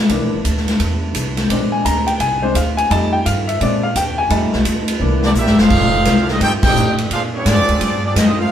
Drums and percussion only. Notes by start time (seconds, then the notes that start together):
0.09 kick, ride
0.45 kick, hi-hat pedal, ride
0.57 snare
0.68 snare, ride
0.80 kick, ride
1.15 kick, hi-hat pedal, ride
1.37 snare, ride
1.50 kick, ride
1.85 kick, hi-hat pedal, ride
2.08 ride
2.20 kick, ride
2.55 kick, hi-hat pedal, ride
2.78 ride
2.91 kick, ride
3.26 kick, hi-hat pedal, ride
3.49 ride
3.61 kick, ride
3.96 kick, hi-hat pedal, ride
4.30 kick, ride
4.53 snare
4.65 kick, hi-hat pedal, ride
4.88 ride
5.00 kick
5.22 snare
5.35 hi-hat pedal
5.46 snare
5.58 snare
5.70 kick, crash
6.05 kick, snare, hi-hat pedal, ride
6.28 snare
6.41 kick, ride
6.63 kick, crash
6.76 hi-hat pedal
6.98 ride
7.11 kick, ride
7.46 kick, snare, hi-hat pedal, ride
7.69 ride
7.81 kick, ride
8.16 kick, snare, hi-hat pedal, ride